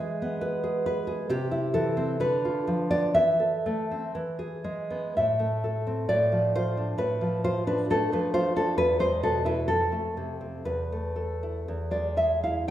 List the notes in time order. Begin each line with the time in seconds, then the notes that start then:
Already playing: E3 G#4 E5
0.00 G#3
0.22 B3
0.41 B4
0.64 G#4
0.86 B4
1.07 G#4
1.30 C3 G4
1.51 E4
1.74 E3 A4
1.97 C4
2.20 D3 B4
2.45 F4
2.67 F3
2.90 B3 D5
3.14 E3 E5
3.40 A4
3.66 A3
3.91 C4
4.15 E3
4.39 G#4
4.64 G#3
4.91 B3
5.17 A2 E5
5.39 A3
5.64 A4
5.87 C4
6.09 A2 D5
6.32 F3
6.56 F4 C5
6.77 D4
6.98 A2 B4
7.21 F3
7.44 F4 C5
7.67 D4 B4
7.90 A3 A4
8.12 F3 B4
8.34 F4 C5
8.56 D4 A4
8.77 E2 B4
8.99 G#3 C5
9.23 B2 A4
9.45 E4 B4
9.68 F2 A4
9.92 A3
10.17 C3
10.41 C4
10.65 E2 B4
10.92 A3
11.16 A4
11.43 E4
11.68 E2
11.91 G#3 D5
12.17 G#4 E5
12.44 E4 F5